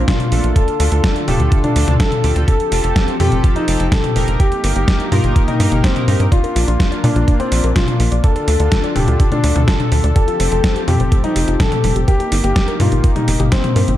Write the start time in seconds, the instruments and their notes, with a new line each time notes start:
Already playing: analog synth pad A#3 D4 F4
0.08 grand piano F4, kick, snare, closed hi-hat, high tom
0.20 closed hi-hat, high tom
0.32 analog synth bass A#1, analog polysynth A3 D4 F4 A4, open hi-hat
0.44 analog synth bass A#1, closed hi-hat
0.56 analog synth pad D3 A4, grand piano A4, kick, closed hi-hat
0.68 closed hi-hat
0.80 analog synth bass D2, analog polysynth A3 D4 F4 A4, open hi-hat
0.92 analog synth bass D2, grand piano A4, closed hi-hat
1.04 kick, snare, closed hi-hat
1.16 closed hi-hat
1.28 analog synth bass D1, analog polysynth A3 D4 F4 A4, grand piano G4, open hi-hat, high tom
1.40 analog synth bass D2, closed hi-hat
1.52 kick, closed hi-hat
1.64 grand piano D4, closed hi-hat, high tom
1.76 analog synth bass D2, analog polysynth A3 D4 F4 A4, open hi-hat
1.88 analog synth bass D2, closed hi-hat, high tom
2.00 grand piano A4, kick, snare, closed hi-hat
2.12 closed hi-hat, high tom
2.24 analog synth bass D2, analog polysynth C4 F4 G4 A4, open hi-hat
2.36 analog synth bass D2, closed hi-hat
2.48 analog synth pad F3 C4 G4, grand piano A4, kick, closed hi-hat
2.60 closed hi-hat
2.72 analog synth bass F1, analog polysynth C4 F4 G4 A4, open hi-hat
2.84 analog synth bass F1, grand piano A4, closed hi-hat
2.96 kick, snare, closed hi-hat
3.08 closed hi-hat
3.20 analog synth bass F2, analog polysynth C4 F4 G4 A4, grand piano G4, open hi-hat, high tom
3.32 analog synth bass F1, closed hi-hat
3.44 kick, closed hi-hat
3.56 grand piano D#4, closed hi-hat
3.68 analog synth bass F1, analog polysynth C4 F4 G4 A4, open hi-hat
3.80 analog synth bass F1, closed hi-hat
3.92 grand piano A4, kick, snare, closed hi-hat, high tom
4.04 closed hi-hat, high tom
4.16 analog synth bass F1, analog polysynth A#3 D#4 G4 A#4, open hi-hat
4.28 analog synth bass F1, closed hi-hat
4.40 analog synth pad A#3 D#4, grand piano G4, kick, closed hi-hat
4.52 closed hi-hat
4.64 analog synth bass G1, analog polysynth A#3 D#4 G4 A#4, open hi-hat
4.76 analog synth bass G1, grand piano G4, closed hi-hat
4.88 kick, snare, closed hi-hat
5.00 closed hi-hat
5.12 analog synth bass G2, analog polysynth A#3 D#4 G4 A#4, grand piano F4, open hi-hat, high tom
5.24 analog synth bass G1, closed hi-hat
5.36 kick, closed hi-hat
5.48 grand piano D#4, closed hi-hat, high tom
5.60 analog synth bass G2, analog polysynth A#3 D#4 G4 A#4, open hi-hat
5.72 analog synth bass G1, closed hi-hat, high tom
5.84 grand piano C4, kick, snare, closed hi-hat
5.96 analog polysynth A#3 D#4 G4 A#4, closed hi-hat, high tom
6.08 analog synth bass G2, analog polysynth A#3 D#4 G4 A#4, open hi-hat
6.20 analog synth bass G2, closed hi-hat
6.32 analog synth pad A#3 D4 F4, grand piano F4, synth arpeggio sound D5, kick, closed hi-hat
6.44 synth arpeggio sound A#4, closed hi-hat
6.56 analog synth bass A#1, synth arpeggio sound F4, open hi-hat
6.68 analog synth bass A#1, synth arpeggio sound D4, grand piano F4, closed hi-hat
6.80 synth arpeggio sound A#3, kick, snare, closed hi-hat
6.92 synth arpeggio sound D5, closed hi-hat
7.04 analog synth bass A#2, grand piano D4, synth arpeggio sound A#4, open hi-hat, high tom
7.16 analog synth bass A#1, synth arpeggio sound F4, closed hi-hat
7.28 synth arpeggio sound D4, kick, closed hi-hat
7.40 synth arpeggio sound A#3, grand piano C4, closed hi-hat
7.52 analog synth bass A#1, synth arpeggio sound D5, open hi-hat
7.64 analog synth bass A#1, synth arpeggio sound A#4, closed hi-hat
7.76 grand piano F4, synth arpeggio sound F4, kick, snare, closed hi-hat, high tom
7.88 synth arpeggio sound D4, closed hi-hat, high tom
8.00 analog synth bass A#1, synth arpeggio sound A#3, open hi-hat
8.12 analog synth bass A#1, synth arpeggio sound D5, closed hi-hat
8.24 analog synth pad D3 D4 F4 A4, grand piano A4, synth arpeggio sound D5, kick, closed hi-hat
8.36 synth arpeggio sound A4, closed hi-hat
8.48 analog synth bass D2, synth arpeggio sound F4, open hi-hat
8.60 analog synth bass D2, synth arpeggio sound D4, grand piano A4, closed hi-hat
8.72 synth arpeggio sound A3, kick, snare, closed hi-hat
8.84 synth arpeggio sound D5, closed hi-hat
8.96 analog synth bass D1, grand piano G4, synth arpeggio sound A4, open hi-hat, high tom
9.08 analog synth bass D2, synth arpeggio sound F4, closed hi-hat
9.20 synth arpeggio sound D4, kick, closed hi-hat
9.32 synth arpeggio sound A3, grand piano D4, closed hi-hat, high tom
9.44 analog synth bass D2, synth arpeggio sound D5, open hi-hat
9.56 analog synth bass D2, synth arpeggio sound A4, closed hi-hat, high tom
9.68 synth arpeggio sound F4, grand piano A4, kick, snare, closed hi-hat
9.80 synth arpeggio sound D4, closed hi-hat, high tom
9.92 analog synth bass D2, synth arpeggio sound A3, open hi-hat
10.04 analog synth bass D2, synth arpeggio sound D5, closed hi-hat
10.16 analog synth pad F3 C4 G4, synth arpeggio sound G4, grand piano A4, kick, closed hi-hat
10.28 synth arpeggio sound F4, closed hi-hat
10.40 analog synth bass F1, synth arpeggio sound C4, open hi-hat
10.52 analog synth bass F1, synth arpeggio sound A3, grand piano A4, closed hi-hat
10.64 synth arpeggio sound G3, kick, snare, closed hi-hat
10.76 synth arpeggio sound G4, closed hi-hat
10.88 analog synth bass F2, synth arpeggio sound F4, grand piano G4, open hi-hat, high tom
11.00 analog synth bass F1, synth arpeggio sound C4, closed hi-hat
11.12 synth arpeggio sound A3, kick, closed hi-hat
11.24 synth arpeggio sound G3, grand piano D#4, closed hi-hat
11.36 analog synth bass F1, synth arpeggio sound G4, open hi-hat
11.48 analog synth bass F1, synth arpeggio sound F4, closed hi-hat
11.60 synth arpeggio sound C4, grand piano A4, kick, snare, closed hi-hat, high tom
11.72 synth arpeggio sound A3, closed hi-hat, high tom
11.84 analog synth bass F1, synth arpeggio sound G3, open hi-hat
11.96 analog synth bass F1, synth arpeggio sound G4, closed hi-hat
12.08 analog synth pad A#3 D#4, grand piano G4, synth arpeggio sound A#4, kick, closed hi-hat
12.20 synth arpeggio sound G4, closed hi-hat
12.32 analog synth bass G1, synth arpeggio sound D#4, open hi-hat
12.44 analog synth bass G1, synth arpeggio sound A#3, grand piano G4, closed hi-hat
12.56 synth arpeggio sound G3, kick, snare, closed hi-hat
12.68 synth arpeggio sound A#4, closed hi-hat
12.80 analog synth bass G2, grand piano F4, synth arpeggio sound G4, open hi-hat, high tom
12.92 analog synth bass G1, synth arpeggio sound D#4, closed hi-hat
13.04 synth arpeggio sound A#3, kick, closed hi-hat
13.16 synth arpeggio sound G3, grand piano D#4, closed hi-hat, high tom
13.28 analog synth bass F1, synth arpeggio sound A#3, open hi-hat
13.40 analog synth bass G1, synth arpeggio sound G4, closed hi-hat, high tom
13.52 grand piano C4, synth arpeggio sound D#4, kick, snare, closed hi-hat
13.64 synth arpeggio sound G3, closed hi-hat, high tom
13.76 analog synth bass G2, synth arpeggio sound A#4, open hi-hat
13.88 analog synth bass G1, synth arpeggio sound G3, closed hi-hat